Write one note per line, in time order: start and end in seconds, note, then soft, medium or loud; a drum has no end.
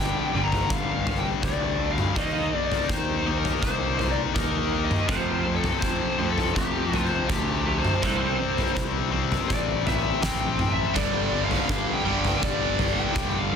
0.00 0.13 G1 medium
0.00 0.30 G2 medium
0.00 0.32 G2 medium
0.00 0.30 D3 medium
0.00 0.32 D3 medium
0.00 0.34 G3 medium
0.00 0.46 G5 medium
0.34 0.65 G1 medium
0.34 0.67 G2 medium
0.34 0.68 D3 medium
0.34 1.44 G3 medium
0.44 0.70 A#5 medium
0.52 floor tom medium
0.70 1.32 G1 medium
0.70 1.03 G2 medium
0.70 1.03 D3 medium
0.70 1.16 F5 medium
0.70 kick loud
1.07 1.41 G2 medium
1.07 1.41 D3 medium
1.07 floor tom medium
1.19 1.26 G5 medium
1.43 2.05 D2 medium
1.43 1.77 G2 medium
1.43 1.76 D3 medium
1.43 2.15 G3 medium
1.43 1.89 D5 medium
1.43 kick loud
1.43 floor tom medium
1.79 2.13 G2 medium
1.79 2.13 D3 medium
1.91 2.16 F5 medium
1.98 mid tom medium
2.16 2.47 D#2 medium
2.16 2.51 D#3 medium
2.16 2.51 A#3 medium
2.16 2.51 D#4 medium
2.16 2.65 D#5 loud
2.16 kick loud
2.16 floor tom medium
2.54 2.87 D#3 medium
2.54 2.87 A#3 medium
2.65 2.91 D5 medium
2.72 floor tom medium
2.88 3.51 D#2 medium
2.88 3.23 D#3 medium
2.88 3.23 A#3 medium
2.88 3.37 C5 medium
2.88 kick loud
3.26 3.60 D#3 medium
3.26 3.60 A#3 medium
3.26 4.34 D#4 medium
3.38 3.60 A#4 medium
3.45 floor tom medium
3.61 4.25 C2 medium
3.61 3.96 D#3 medium
3.61 3.96 A#3 medium
3.61 4.12 C5 medium
3.61 kick loud
3.98 4.32 D#3 medium
3.98 4.32 A#3 medium
3.98 floor tom medium
4.11 4.17 D5 medium
4.34 4.98 D#2 loud
4.34 4.69 D#3 medium
4.34 4.69 A#3 medium
4.34 5.07 D#4 medium
4.34 4.86 A#4 medium
4.34 kick loud
4.34 floor tom medium
4.72 5.06 D#3 medium
4.72 5.06 A#3 medium
4.84 5.10 D#5 medium
4.91 mid tom medium
5.06 6.16 F2 medium
5.06 5.71 F2 loud
5.06 6.17 C3 medium
5.06 5.44 F3 medium
5.06 5.44 A3 medium
5.06 5.44 C4 loud
5.06 5.55 C5 medium
5.06 kick loud
5.06 floor tom medium
5.46 5.80 F3 medium
5.46 5.79 A3 medium
5.55 5.80 A4 medium
5.64 floor tom medium
5.80 5.98 F2 medium
5.80 6.16 F3 medium
5.80 6.16 A3 medium
5.80 6.30 C5 medium
5.80 kick medium
6.18 6.50 F2 medium
6.18 7.26 F2 medium
6.18 7.27 C3 medium
6.18 6.52 F3 medium
6.18 6.52 A3 medium
6.30 6.56 A4 medium
6.38 floor tom medium
6.54 7.18 F2 medium
6.54 6.89 F3 medium
6.54 6.89 A3 medium
6.54 7.06 G4 medium
6.54 kick medium
6.92 7.26 F3 medium
6.92 7.26 A3 medium
6.92 floor tom medium
7.04 7.30 C5 medium
7.28 7.91 D2 medium
7.28 8.00 F2 medium
7.28 8.00 C3 medium
7.28 7.63 F3 medium
7.28 7.63 A3 medium
7.28 7.80 G4 medium
7.28 kick loud
7.28 floor tom medium
7.67 8.00 F3 medium
7.67 8.00 A3 medium
7.78 8.84 C5 medium
7.85 mid tom medium
8.02 8.34 C2 medium
8.02 8.37 C3 medium
8.02 8.38 E3 loud
8.02 8.38 G3 loud
8.02 9.10 C4 medium
8.02 kick loud
8.02 floor tom medium
8.39 8.72 C3 medium
8.39 8.73 E3 medium
8.58 floor tom medium
8.76 9.38 C2 medium
8.76 9.09 C3 medium
8.76 9.10 E3 medium
8.76 kick loud
9.11 9.46 C3 medium
9.11 9.46 E3 medium
9.11 10.22 G3 medium
9.11 10.20 C4 medium
9.32 floor tom medium
9.48 10.12 A1 medium
9.48 9.83 C3 medium
9.48 9.83 E3 medium
9.48 9.86 D5 medium
9.48 kick loud
9.86 10.20 C3 medium
9.86 10.20 E3 medium
9.86 10.20 E5 medium
9.86 floor tom medium
10.22 10.85 A1 medium
10.22 10.55 C3 medium
10.22 10.56 E3 medium
10.22 10.96 G3 medium
10.22 10.94 C4 medium
10.22 10.73 G5 medium
10.22 kick loud
10.22 snare medium
10.22 floor tom medium
10.58 10.92 C3 medium
10.58 10.92 E3 medium
10.58 mid tom medium
10.72 10.95 E5 medium
10.95 11.58 G1 loud
10.95 11.30 G2 medium
10.95 11.30 D3 medium
10.95 11.31 G3 medium
10.95 11.44 D5 loud
10.95 kick loud
10.95 floor tom medium
11.32 11.66 G2 medium
11.32 11.66 D3 medium
11.44 11.95 F5 medium
11.51 floor tom medium
11.69 11.85 G1 medium
11.69 12.02 G2 medium
11.69 12.02 D3 medium
11.69 kick loud
11.93 12.44 G5 medium
12.05 12.36 G1 medium
12.05 12.38 G2 medium
12.05 12.39 D3 medium
12.05 13.14 G3 medium
12.25 floor tom medium
12.42 13.04 G1 medium
12.42 12.75 G2 medium
12.42 12.76 D3 medium
12.42 12.93 D5 medium
12.42 kick loud
12.79 13.12 G2 medium
12.79 13.12 D3 medium
12.79 floor tom medium
12.92 13.29 G5 medium
13.15 13.56 G1 medium
13.15 13.48 G2 medium
13.15 13.49 D3 medium
13.15 13.56 G3 medium
13.15 kick loud
13.15 floor tom medium
13.30 13.39 G5 medium
13.38 13.56 F5 medium
13.52 13.56 G2 medium
13.52 13.56 D3 medium